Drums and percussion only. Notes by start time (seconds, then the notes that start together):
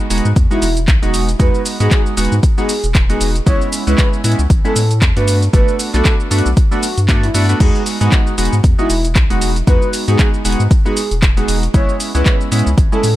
0.10 open hi-hat, cabasa
0.18 closed hi-hat
0.25 cabasa
0.36 kick, closed hi-hat, cabasa
0.51 cabasa
0.62 open hi-hat, cabasa
0.77 closed hi-hat, cabasa
0.88 kick, clap, closed hi-hat, cabasa
1.03 closed hi-hat, cabasa
1.14 open hi-hat, cabasa
1.29 closed hi-hat, cabasa
1.40 kick, closed hi-hat, cabasa
1.55 cabasa
1.66 open hi-hat, cabasa
1.80 closed hi-hat, cabasa
1.91 kick, clap, closed hi-hat, cabasa
2.06 cabasa
2.17 open hi-hat, cabasa
2.25 closed hi-hat
2.32 cabasa
2.43 kick, closed hi-hat, cabasa
2.58 cabasa
2.69 open hi-hat, cabasa
2.84 closed hi-hat, cabasa
2.95 kick, clap, closed hi-hat, cabasa
3.10 closed hi-hat, cabasa
3.21 open hi-hat, cabasa
3.36 closed hi-hat, cabasa
3.47 kick, closed hi-hat, cabasa
3.61 cabasa
3.72 open hi-hat, cabasa
3.87 closed hi-hat, cabasa
3.98 kick, clap, closed hi-hat, cabasa
4.13 cabasa
4.24 open hi-hat, cabasa
4.32 closed hi-hat
4.39 cabasa
4.50 kick, closed hi-hat, cabasa
4.65 cabasa
4.76 open hi-hat, cabasa
4.91 closed hi-hat, cabasa
5.02 kick, clap, closed hi-hat, cabasa
5.17 closed hi-hat, cabasa
5.28 open hi-hat, cabasa
5.42 closed hi-hat, cabasa
5.53 kick, closed hi-hat, cabasa
5.68 cabasa
5.79 open hi-hat, cabasa
5.94 clap, closed hi-hat, cabasa
6.05 kick, clap, closed hi-hat, cabasa
6.20 cabasa
6.31 open hi-hat, cabasa
6.38 closed hi-hat
6.46 cabasa
6.57 kick, closed hi-hat, cabasa
6.72 cabasa
6.83 open hi-hat, cabasa
6.98 closed hi-hat, cabasa
7.09 kick, clap, closed hi-hat, cabasa
7.23 closed hi-hat, cabasa
7.34 open hi-hat, cabasa
7.49 closed hi-hat, cabasa
7.60 kick, closed hi-hat, crash, cabasa
7.75 cabasa
7.86 open hi-hat, cabasa
8.01 closed hi-hat, cabasa
8.12 kick, clap, closed hi-hat, cabasa
8.27 cabasa
8.38 open hi-hat, cabasa
8.45 closed hi-hat
8.53 cabasa
8.64 kick, closed hi-hat, cabasa
8.79 cabasa
8.90 open hi-hat, cabasa
9.04 closed hi-hat, cabasa
9.16 kick, clap, closed hi-hat, cabasa
9.30 closed hi-hat, cabasa
9.41 open hi-hat, cabasa
9.56 closed hi-hat, cabasa
9.67 kick, closed hi-hat, cabasa
9.82 cabasa
9.93 open hi-hat, cabasa
10.08 closed hi-hat, cabasa
10.19 kick, clap, closed hi-hat, cabasa
10.34 cabasa
10.45 open hi-hat, cabasa
10.52 closed hi-hat
10.60 cabasa
10.71 kick, closed hi-hat, cabasa
10.86 cabasa
10.97 open hi-hat, cabasa
11.11 closed hi-hat, cabasa
11.22 kick, clap, closed hi-hat, cabasa
11.37 closed hi-hat, cabasa
11.48 open hi-hat, cabasa
11.63 closed hi-hat, cabasa
11.74 kick, closed hi-hat, cabasa
11.89 cabasa
12.00 open hi-hat, cabasa
12.15 closed hi-hat, cabasa
12.26 kick, clap, closed hi-hat, cabasa
12.41 cabasa
12.52 open hi-hat, cabasa
12.59 closed hi-hat
12.67 cabasa
12.78 kick, closed hi-hat, cabasa
12.93 cabasa
13.04 open hi-hat, cabasa